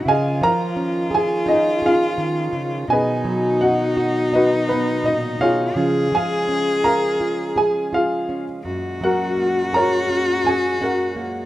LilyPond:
<<
  \new Staff \with { instrumentName = "Grand piano" } { \time 4/4 \key cis \mixolydian \tempo 4 = 84 <gis' dis'' eis'' gis''>8 <ais' eis'' ais''>4 <gis' gis''>8 <dis' gis' dis''>8 <eis' gis' eis''>4 r8 | <gis' b' dis'' gis''>4 <fis' dis'' fis''>4 <dis' fis' b' dis''>8 <b b'>8 <dis' dis''>8 <eis' gis' cis'' eis''>8~ | <eis' gis' cis'' eis''>8 <gis' eis'' gis''>4 <ais' eis'' ais''>4 <gis' gis''>8 <eis' gis' eis''>8. r16 | r8 <fis' ais' fis''>4 <ais' cis'' ais''>4 <gis' gis''>8 <fis' ais' fis''>8. r16 | }
  \new Staff \with { instrumentName = "Cello" } { \time 4/4 \key cis \mixolydian eis'1 | dis'1 | gis'2.~ gis'8 r8 | fis'1 | }
  \new Staff \with { instrumentName = "Nylon-string guitar" } { \time 4/4 \key cis \mixolydian << { r4 cis'8 gis'8 dis'8 gis'4. | r4. fis'8 dis'2 | <eis cis' eis' gis'>4 cis'8 gis'8 eis'8 gis'8 eis'8 cis'8 | r4 ais8 gis'8 cis'8 gis'8 cis'8 ais8 | } \\ { cis8 eis2~ eis8 dis8 cis8 | b,8 fis2~ fis8 ais,8 b,8 | cis8 eis2.~ eis8 | fis,8 fis2.~ fis8 | } >> }
  \new Staff \with { instrumentName = "Harmonium" } { \clef bass \time 4/4 \key cis \mixolydian <dis eis cis'>1 | <dis fis dis'>1 | <cis gis eis'>1 | <ais, fis>1 | }
>>